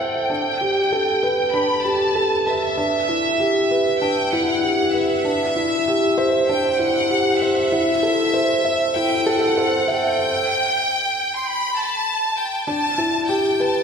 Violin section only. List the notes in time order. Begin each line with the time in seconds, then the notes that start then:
0.00 G5
1.53 B5
1.84 A5
2.47 E5
4.02 G5
4.33 F#5
4.94 E5
6.48 G5
6.71 G5
6.79 F#5
7.41 E5
8.96 G5
9.27 F#5
9.89 G5
11.36 C6
11.44 B5
11.75 A5
12.37 G5
12.65 A5
13.29 G5
13.60 A5